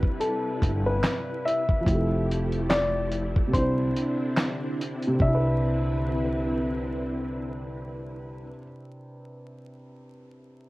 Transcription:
Already playing: felt piano C3 C4 D4 E4 A4 B4 F5, string machine C3 G3 E4 B4, upright piano B4
0.03 kick
0.20 upright piano A4, closed hi-hat
0.62 upright bass G1, kick, closed hi-hat
0.86 upright piano B4
1.04 snare, clap, closed hi-hat
1.45 upright piano E5, closed hi-hat
1.69 kick
1.81 felt piano F3 C4
1.86 upright bass F1, string machine F3 A3 E4 G4, felt piano E4, kick, closed hi-hat
1.91 felt piano G4 A4
2.31 closed hi-hat
2.52 closed hi-hat
2.70 upright piano D5, snare, clap, closed hi-hat
3.12 closed hi-hat
3.36 kick
3.47 felt piano C3 C4
3.53 upright bass C2, string machine D3 C4 D4, felt piano D4, upright piano C5, kick, closed hi-hat
3.58 felt piano E4 C5
3.96 closed hi-hat
4.37 snare, clap, closed hi-hat
4.81 closed hi-hat
5.03 closed hi-hat
5.07 felt piano C3
5.14 felt piano C4
5.20 upright bass C2, string machine D3 C4 E4 B4, felt piano D4, upright piano E5, kick
5.28 felt piano E4
5.35 felt piano B4

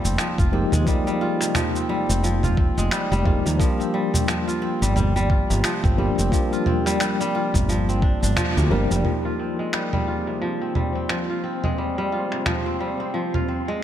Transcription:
Already playing: kora C3 F3 G3 G#3 F4, tine electric piano F3 A#3 D#4 G4
0.05 fretless electric bass F1, kora C4, shaker
0.18 kora F3, finger snap, shaker
0.38 fretless electric bass F1, kora F4, kick, shaker
0.52 tine electric piano F3 G#3 A#3 D#4 G4, kora C4
0.72 fretless electric bass D#2, kora G#3, mid tom, shaker
0.85 tine electric piano F3 A#3 D#4 G4, kora G3, kick, shaker
1.07 kora G3, shaker
1.21 kora F4
1.41 kora C3, finger snap, shaker
1.55 kora F3, finger snap, mid tom, shaker
1.75 kora C4, shaker
1.89 kora G3
2.09 fretless electric bass F1, kora C4, shaker
2.23 kora F3, shaker
2.43 kora F4, mid tom, shaker
2.57 kora C4, kick
2.77 fretless electric bass F1, kora G#3, shaker
2.91 kora G3, finger snap, shaker
3.12 fretless electric bass F1, kora G3, shaker
3.24 tine electric piano F3 G#3 A#3 D#4 G4, kora F4, kick, mid tom
3.46 fretless electric bass D#2, kora C3, shaker
3.57 tine electric piano F3 G3 A#3 D4 G4, kora F3, kick, shaker
3.80 kora C4, shaker
3.94 kora G3
4.14 kora C4, mid tom, shaker
4.28 kora F3, finger snap, shaker
4.48 kora F4, shaker
4.62 kora C4
4.82 fretless electric bass G1, kora G3, shaker
4.96 kora G3, mid tom, shaker
5.16 kora G3, shaker
5.30 kora F4, kick
5.50 fretless electric bass G1, kora C3, shaker
5.64 kora F3, finger snap, shaker
5.84 fretless electric bass G1, kora C4, kick, mid tom, shaker
5.97 tine electric piano F3 G3 A#3 D4 G4, kora G3
6.18 fretless electric bass F1, kora C4, shaker
6.30 tine electric piano F3 G3 A#3 D4, kora F3, kick, shaker
6.34 tine electric piano G4
6.53 kora F4, shaker
6.66 kora C4, mid tom
6.86 kora G3, finger snap, shaker
7.00 kora G3, finger snap, shaker
7.21 kora G3, shaker
7.35 kora F4
7.54 fretless electric bass G1, kora C3, kick, mid tom, shaker
7.69 kora F3, shaker
7.89 kora C4, shaker
8.02 kora D4, kick
8.23 fretless electric bass G1, kora D4, shaker
8.37 kora F3, finger snap, mid tom, shaker
8.57 fretless electric bass D2, kora C3, shaker
8.70 fretless electric bass G1, tine electric piano F3 G3 A#3 D4 A#4, kora G3
8.91 fretless electric bass F1, kora G3, shaker
9.03 tine electric piano F3 A#3 G4, kora F3, synth texture C4 C5, mid tom
9.25 kora F4
9.39 kora C4
9.59 kora G#3
9.73 kora G3, finger snap
9.93 kora G3, mid tom
10.07 kora F4
10.27 kora C3
10.42 kora F3
10.62 kora C4
10.75 kora G3, mid tom
10.95 kora C4
11.09 kora F3, finger snap
11.30 kora F4
11.44 kora C4
11.64 kora G#3, mid tom
11.78 kora G3
11.98 kora G3
12.12 kora F4
12.32 kora C3, finger snap
12.46 kora F3, finger snap, mid tom
12.66 kora C4
12.80 kora G3
13.00 kora C4
13.14 kora F3
13.34 kora F4, mid tom
13.48 kora C4
13.68 kora G#3

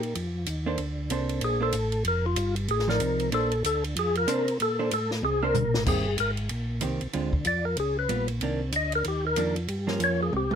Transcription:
Already playing: tonewheel organ A#2, hollow-body jazz guitar A#3 D#4 G4
0.03 ride
0.15 tonewheel organ F2, ride
0.46 tonewheel organ D#2, hi-hat pedal, ride
0.66 hollow-body jazz guitar A#3 D4 A4 C5
0.78 tonewheel organ D2, ride
1.10 tonewheel organ C2, hollow-body jazz guitar A#3 D4 A4 C5, hi-hat pedal, ride
1.29 ride
1.41 tonewheel organ A#1 G#4, ride
1.61 hollow-body jazz guitar A#3 D4 A4 C5, tonewheel organ A4
1.72 tonewheel organ A1, hi-hat pedal, ride
1.92 ride
2.05 tonewheel organ F1 A#4, ride
2.26 tonewheel organ F4
2.36 tonewheel organ G1, hi-hat pedal, ride
2.56 ride
2.68 tonewheel organ A1 G#4, ride
2.79 snare
2.88 hollow-body jazz guitar F3 D#4 D5, tonewheel organ A#4, snare
2.99 tonewheel organ C2, hi-hat pedal, ride
3.20 ride
3.32 tonewheel organ A#1 A4, hollow-body jazz guitar A#3 D4 A4 C5, ride
3.52 ride
3.64 tonewheel organ D2 A4, hi-hat pedal, ride
3.84 ride
3.96 tonewheel organ F2 G#4, ride
4.15 tonewheel organ A#4, ride
4.27 tonewheel organ C3, hollow-body jazz guitar A#3 D4 A4 C5, hi-hat pedal, ride
4.48 ride
4.60 tonewheel organ A#2 A4, ride
4.79 hollow-body jazz guitar A#3 D4 A4 C5
4.91 tonewheel organ A2 A4, hi-hat pedal, ride
5.11 snare
5.23 tonewheel organ C2 G#4, high tom
5.42 hollow-body jazz guitar A#3 D4 A4 C5, tonewheel organ A#4
5.54 tonewheel organ D2, floor tom, hi-hat pedal
5.65 tonewheel organ A#1
5.74 tonewheel organ A1, snare
5.86 tonewheel organ G1 G#4, hollow-body jazz guitar D#3 A#3 C4 G4, kick, crash
6.18 tonewheel organ G#1 A#4, hi-hat pedal, ride
6.37 ride
6.49 tonewheel organ A#1, ride
6.81 tonewheel organ C2, hollow-body jazz guitar D#3 A#3 C4 G4, hi-hat pedal, ride
7.01 tonewheel organ C2, ride
7.13 tonewheel organ D2, hollow-body jazz guitar D3 G#3 C4 F4, ride
7.33 kick
7.45 tonewheel organ F2 D5, hi-hat pedal, ride
7.65 tonewheel organ A#4
7.77 tonewheel organ C#2 G#4, ride
7.99 tonewheel organ B4
8.09 tonewheel organ A#1, hollow-body jazz guitar G3 B3 F4, hi-hat pedal, ride
8.28 ride
8.41 tonewheel organ C2, hollow-body jazz guitar D#3 A#3 D4, ride
8.72 tonewheel organ D2 D#5, hi-hat pedal, ride
8.92 tonewheel organ A#4, ride
9.04 tonewheel organ D#2 G4, ride
9.27 tonewheel organ A#4
9.36 tonewheel organ F2, hollow-body jazz guitar D#3 A#3 D4, hi-hat pedal, ride
9.56 ride
9.68 tonewheel organ G2, ride
9.87 hollow-body jazz guitar F3 A#3 C#4, snare
10.00 tonewheel organ F2 C#5, hi-hat pedal, ride
10.23 tonewheel organ G#4
10.33 tonewheel organ C2, mid tom
10.37 tonewheel organ G4
10.51 mid tom

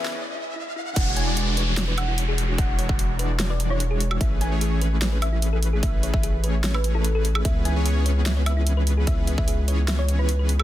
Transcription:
Already playing: sub bass F#1, supersaw synth E3 B3 C#4 G#4 B4, riser
0.05 snare
0.15 synth arpeggio sound E4
0.35 synth arpeggio sound E4
0.56 synth arpeggio sound E4
0.76 synth arpeggio sound E4
0.96 sub bass E1, supersaw synth E3 G#3 D4 F#4 C#5, synth arpeggio sound E4, synth pluck F#5, kick, closed hi-hat, crash, downlifter
1.17 synth arpeggio sound C#5, synth pluck G#5, closed hi-hat
1.27 supersaw synth E3 G#3 D4 F#4 D5
1.37 synth arpeggio sound F#4, closed hi-hat
1.57 supersaw synth E3 G#3 D4 F#4 C#5, synth arpeggio sound B4, closed hi-hat
1.77 synth arpeggio sound C#5, snare, closed hi-hat
1.88 synth arpeggio sound B4
1.98 synth pluck F#5, closed hi-hat, high woodblock
2.08 synth arpeggio sound E4
2.18 closed hi-hat
2.28 synth arpeggio sound G#4
2.38 closed hi-hat
2.49 synth arpeggio sound F#4
2.58 supersaw synth E3 G#3 D4 F#4 C#5, synth arpeggio sound E4, synth pluck F#5, kick, closed hi-hat
2.79 synth arpeggio sound C#5, closed hi-hat
2.89 supersaw synth E3 G#3 D4 F#4 C#5, synth pluck F#5, kick
2.99 synth arpeggio sound F#4, closed hi-hat
3.19 supersaw synth E3 G#3 D4 F#4 D5, synth arpeggio sound B4, closed hi-hat
3.40 synth arpeggio sound C#5, snare, closed hi-hat
3.50 synth arpeggio sound B4, synth pluck D5
3.60 closed hi-hat
3.70 supersaw synth E3 G#3 D4 F#4 C#5, synth arpeggio sound E4, synth pluck C#5
3.80 closed hi-hat
3.91 synth arpeggio sound G#4
4.00 closed hi-hat
4.11 synth arpeggio sound F#4, high woodblock
4.21 sub bass A1, supersaw synth E3 A3 C#4 G#4 B4, synth arpeggio sound E4, synth pluck E5, kick, closed hi-hat
4.41 synth arpeggio sound C#5, synth pluck G#5, closed hi-hat
4.51 supersaw synth E3 A3 C#4 G#4 C#5
4.61 synth arpeggio sound G#4, closed hi-hat
4.81 supersaw synth E3 A3 C#4 G#4 B4, synth arpeggio sound B4, closed hi-hat
5.02 synth arpeggio sound C#5, snare, closed hi-hat
5.12 synth arpeggio sound B4
5.22 synth pluck E5, closed hi-hat, high woodblock
5.33 synth arpeggio sound E4
5.42 closed hi-hat
5.53 synth arpeggio sound A4
5.63 closed hi-hat
5.73 synth arpeggio sound G#4
5.83 supersaw synth E3 A3 C#4 G#4 B4, synth arpeggio sound E4, synth pluck E5, kick, closed hi-hat
6.03 synth arpeggio sound C#5, closed hi-hat
6.14 supersaw synth E3 A3 C#4 G#4 B4, synth pluck E5, kick
6.23 synth arpeggio sound G#4, closed hi-hat
6.44 supersaw synth E3 A3 C#4 G#4 C#5, synth arpeggio sound B4, closed hi-hat
6.64 synth arpeggio sound C#5, snare, closed hi-hat
6.74 synth arpeggio sound B4, synth pluck B4, high woodblock
6.84 closed hi-hat
6.95 supersaw synth E3 A3 C#4 G#4 B4, synth arpeggio sound E4, synth pluck A4
7.04 closed hi-hat
7.15 synth arpeggio sound A4
7.25 closed hi-hat
7.35 synth arpeggio sound G#4, high woodblock
7.45 sub bass C#2, supersaw synth E3 B3 C#4 G#4 B4, synth arpeggio sound E4, synth pluck E5, kick, closed hi-hat
7.65 synth arpeggio sound E5, synth pluck G#5, closed hi-hat
7.76 supersaw synth E3 B3 C#4 G#4 C#5
7.86 synth arpeggio sound G#4, closed hi-hat
8.06 supersaw synth E3 B3 C#4 G#4 B4, synth arpeggio sound C#5, closed hi-hat
8.26 synth arpeggio sound E5, snare, closed hi-hat
8.37 synth arpeggio sound C#5
8.46 synth pluck E5, closed hi-hat, high woodblock
8.57 synth arpeggio sound E4
8.67 closed hi-hat
8.77 synth arpeggio sound B4
8.87 closed hi-hat
8.97 synth arpeggio sound G#4
9.07 supersaw synth E3 B3 C#4 G#4 B4, synth arpeggio sound E4, synth pluck E5, kick, closed hi-hat
9.27 synth arpeggio sound E5, closed hi-hat
9.38 supersaw synth E3 B3 C#4 G#4 B4, synth pluck E5, kick
9.48 synth arpeggio sound G#4, closed hi-hat
9.68 supersaw synth E3 B3 C#4 G#4 C#5, synth arpeggio sound C#5, closed hi-hat
9.88 synth arpeggio sound E5, snare, closed hi-hat
9.99 synth arpeggio sound C#5, synth pluck C#5
10.09 closed hi-hat
10.19 supersaw synth E3 B3 C#4 G#4 B4, synth arpeggio sound E4, synth pluck B4
10.29 closed hi-hat
10.39 synth arpeggio sound B4
10.49 closed hi-hat
10.60 synth arpeggio sound G#4, high woodblock

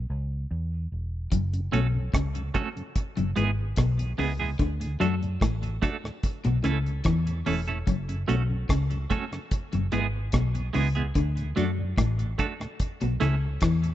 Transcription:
0.10 fingered electric bass C#2
0.51 fingered electric bass E2
0.92 fingered electric bass E1
1.32 fingered electric bass F#1, clean electric guitar F#2, kick, closed hi-hat
1.53 tonewheel organ F#2 C#3, closed hi-hat
1.72 fingered electric bass B1, clean electric guitar B2 A3 C#4 F#4 A4, tonewheel organ F#3 A3 C#4, closed hi-hat
1.95 tonewheel organ F#2 C#3
2.14 fingered electric bass C#2, clean electric guitar C#3, kick, cross-stick, closed hi-hat
2.35 tonewheel organ F#2 C#3, closed hi-hat
2.54 tonewheel organ F#3 A3 C#4, clean electric guitar A3 C#4 F#4 A4, kick, closed hi-hat
2.76 tonewheel organ F#2 C#3, closed hi-hat
2.96 kick, closed hi-hat
3.17 fingered electric bass F#1, tonewheel organ E2 B2, clean electric guitar F#2, closed hi-hat
3.36 fingered electric bass G#1, clean electric guitar G#2 G#3 B3 E4 G#4, tonewheel organ E3 G#3 B3, closed hi-hat
3.76 fingered electric bass B1, clean electric guitar B2, kick, cross-stick, closed hi-hat
3.99 tonewheel organ E2 B2, closed hi-hat
4.18 fingered electric bass C#2, clean electric guitar C#3 G#3 B3 E4 G#4, tonewheel organ E3 G#3 B3, open hi-hat
4.39 tonewheel organ E2 B2, clean electric guitar G#3 B3 E4 G#4
4.59 fingered electric bass D2, clean electric guitar D3, kick, closed hi-hat
4.80 tonewheel organ D2 A2, closed hi-hat
5.00 fingered electric bass F#2, tonewheel organ F#3 A3 D4, clean electric guitar F#3 A3 D4 F#4 A4, closed hi-hat
5.21 tonewheel organ D2 A2, closed hi-hat
5.41 fingered electric bass A1, clean electric guitar A2, kick, cross-stick, closed hi-hat
5.62 tonewheel organ D2 A2, closed hi-hat
5.82 tonewheel organ F#3 A3 D4, clean electric guitar A3 D4 F#4 A4, kick, closed hi-hat
6.04 tonewheel organ D2 A2, cross-stick
6.23 kick, closed hi-hat
6.44 fingered electric bass B1, tonewheel organ A2, clean electric guitar B2, closed hi-hat
6.63 fingered electric bass C#2, clean electric guitar C#3 A3 C#4 E4 A4, tonewheel organ E3 A3 C#4, cross-stick, closed hi-hat
6.86 closed hi-hat
7.04 fingered electric bass E2, clean electric guitar E3, kick, cross-stick, closed hi-hat
7.27 tonewheel organ A2, closed hi-hat
7.46 fingered electric bass E1, clean electric guitar E2 A3 C#4 E4 A4, tonewheel organ E3 A3 C#4, open hi-hat
7.68 tonewheel organ A2, clean electric guitar A3 C#4 E4 A4, closed hi-hat
7.87 fingered electric bass F#1, clean electric guitar F#2, kick, closed hi-hat
8.09 tonewheel organ F#2 C#3, closed hi-hat
8.28 fingered electric bass B1, clean electric guitar B2 A3 C#4 F#4 A4, tonewheel organ F#3 A3 C#4, closed hi-hat
8.50 tonewheel organ F#2 C#3
8.69 fingered electric bass C#2, clean electric guitar C#3, kick, cross-stick, closed hi-hat
8.90 tonewheel organ F#2 C#3, closed hi-hat
9.10 tonewheel organ F#3 A3 C#4, clean electric guitar A3 C#4 F#4 A4, kick, closed hi-hat
9.32 tonewheel organ F#2 C#3, cross-stick, closed hi-hat
9.51 kick, closed hi-hat
9.73 fingered electric bass F#1, tonewheel organ E2 B2, clean electric guitar F#2, closed hi-hat
9.92 fingered electric bass G#1, clean electric guitar G#2 G#3 B3 E4 G#4, tonewheel organ E3 G#3 B3, closed hi-hat
10.32 fingered electric bass B1, clean electric guitar B2, kick, cross-stick, closed hi-hat
10.55 tonewheel organ E2 B2, closed hi-hat
10.73 fingered electric bass C#2, clean electric guitar C#3 G#3 B3 E4 G#4, tonewheel organ E3 G#3 B3, open hi-hat
10.95 tonewheel organ E2 B2, clean electric guitar G#3 B3 E4 G#4, closed hi-hat
11.15 fingered electric bass D2, clean electric guitar D3, kick, closed hi-hat
11.37 tonewheel organ D2 A2, closed hi-hat
11.56 fingered electric bass F#2, tonewheel organ F#3 A3 D4, clean electric guitar F#3 A3 D4 F#4 A4, closed hi-hat
11.77 tonewheel organ D2 A2
11.98 fingered electric bass A1, clean electric guitar A2, kick, cross-stick, closed hi-hat
12.18 tonewheel organ D2 A2, closed hi-hat
12.38 tonewheel organ F#3 A3 D4, clean electric guitar A3 D4 F#4 A4, kick, closed hi-hat
12.60 tonewheel organ D2 A2, cross-stick, closed hi-hat
12.80 kick, closed hi-hat
13.01 fingered electric bass B1, tonewheel organ A2, clean electric guitar B2, closed hi-hat
13.20 fingered electric bass C#2, clean electric guitar C#3 A3 C#4 E4 A4, tonewheel organ E3 A3 C#4, cross-stick, closed hi-hat
13.61 fingered electric bass E2, clean electric guitar E3, kick, cross-stick, closed hi-hat
13.83 tonewheel organ A2, closed hi-hat

